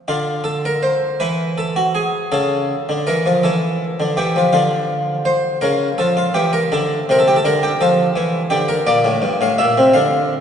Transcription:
0.08 D3 F4
0.44 A4
0.65 A#4
0.83 C5
1.20 E3 B4
1.58 A4
1.76 F#4
1.95 G#4
2.32 C#3 A4
2.89 D3
3.07 E3 A#4
3.26 F3
3.43 E3 A4
4.00 D3
4.17 E3 G4
4.36 F3
4.53 D3 F4
5.25 C5
5.61 C#3 A#4
5.98 F3 A4
6.17 F4
6.34 E3 G4
6.53 A#4
6.72 D3 A4
7.09 C3 A#4
7.19 A4
7.28 G4
7.36 A4
7.45 D3 A#4
7.63 G4
7.81 F3 A4
8.16 E3
8.50 D3 G4
8.68 A#4
8.87 A#2 D5
9.04 A2
9.22 G2
9.41 A2 F5
9.58 A#2 E5
9.78 C3
9.94 D3 F5

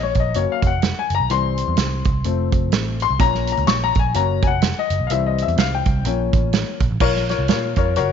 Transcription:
Already playing: A#1 F3 A#3 C#4
0.03 C#5
0.15 A#1, kick, closed hi-hat
0.20 D#5
0.34 F#1 F#3 A#3 C#4 C#5, closed hi-hat
0.52 F5
0.62 F1, kick, closed hi-hat
0.67 F#5
0.82 snare, closed hi-hat
0.99 G#5
1.10 F#1, closed hi-hat
1.15 A#5
1.20 B1
1.30 C2 E3 G3 C4 C6, closed hi-hat
1.58 closed hi-hat
1.68 E2
1.77 C2, snare, closed hi-hat
2.05 C2, kick, closed hi-hat
2.24 F1 F3 A3 C4, closed hi-hat
2.52 F1, kick, closed hi-hat
2.72 A1, snare, closed hi-hat
3.00 C6, closed hi-hat
3.10 C2
3.19 A#1 F3 A#3 C#4 A#5, kick, closed hi-hat
3.34 snare
3.47 closed hi-hat
3.52 A#5
3.57 C#2, closed hi-hat
3.67 A#1 C#6, snare, closed hi-hat
3.84 A#5
3.95 A#1, kick, closed hi-hat
3.99 G#5
4.14 F#1 F#3 A#3 C#4 A#5, closed hi-hat
4.42 F1 G#5, kick, closed hi-hat
4.47 F#5
4.62 snare, closed hi-hat
4.79 D#5
4.90 F#1, closed hi-hat
5.00 B1
5.07 C2 E3 G3 F5, closed hi-hat
5.11 C4 E5
5.26 D#5
5.38 closed hi-hat
5.42 E5
5.48 E2, closed hi-hat
5.57 C2 F5, snare, closed hi-hat
5.75 G5
5.85 C2, kick, closed hi-hat
6.05 A#1 F3 A#3 C#4, closed hi-hat
6.33 A1, kick, closed hi-hat
6.53 snare, closed hi-hat
6.80 A#1, kick, closed hi-hat
6.91 A1
7.00 A#1 F4 A#4 C#5, kick, crash
7.16 snare
7.29 F4 A#4 C#5, snare, closed hi-hat
7.39 C2
7.48 A#2 F4 A#4 C#5, snare, closed hi-hat
7.76 F2 F4 A#4 C#5, kick, closed hi-hat
7.96 F#1 F#4 A#4 C#5, closed hi-hat

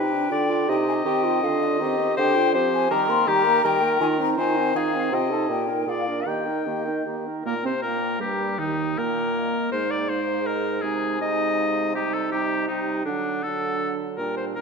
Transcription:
Already playing: C3 D#4 G4 B4 G5
0.13 D4
0.30 D3 D4 F4 D5
0.48 F4
0.68 C3 D#4 G4 D#5 G5
0.87 G#5
1.05 D#3 C4 G4 G5
1.24 F4
1.43 D3 D4 F4 F5
1.62 D5
1.80 D#3 C4 G4 D#5
1.99 C4
2.17 D3 D4 G4 C5 G5
2.35 F4
2.54 F3 C4 G4 C5
2.73 G#5
2.90 D#3 G3 G4 A#4 A#5
3.08 A#3 A#4 C6
3.26 D#3 G3 G4 A#5
3.44 A#3 A#4
3.63 D#3 G3 G4 A#4 G5
3.82 A#3 A#4
3.99 D#3 D#4 F4 G#5
4.18 C4 D#4 A#5
4.37 D#3 D#4 F4 C5 G#5
4.55 C4 D#4
4.74 D#3 D#4 F4 G#4 F5
4.93 C4 D#4
5.11 C3 C4 F4 D#5 G5
5.30 D#4 A4 A5
5.48 A#2 A#3 G4 G5
5.68 D#4 A#4
5.87 A#2 F4 G#4 D5 F5
6.07 D4 A#4
6.26 D#3 A#3 G4 D#5 G5
6.46 D#4 A#4
6.65 D#3 A#3 G4
6.85 D#4 A#4
7.05 D#3 A#3 G4
7.26 D#4 A#4
7.46 A#2 A#3 A#4
7.63 C3 C4 C5
7.82 A#2 A#3 A#4 G5
8.19 G2 G3 G4 A#5
8.58 D#2 D#3 D#4 G5
8.98 A#2 A#3 A#4
9.37 D#5
9.72 G#2 G#3 D#4 C5 F5
9.91 D5
10.08 G#3 D#4 C5
10.46 A#4 D#5
10.82 C3 G#3 D#4 G#4 G#5
11.21 G#3 D#4 D#5
11.59 F5
11.95 G3 D#4 G4 D#5
12.14 A4
12.32 G3 D#4 G4
12.68 G3 D#4 G5
13.05 D3 F#3 D4 F#5
13.43 F#3 D4 A4
14.17 A#2 G3 D4 A#4 G5
14.37 C5
14.55 G3 D4 A#4 G5

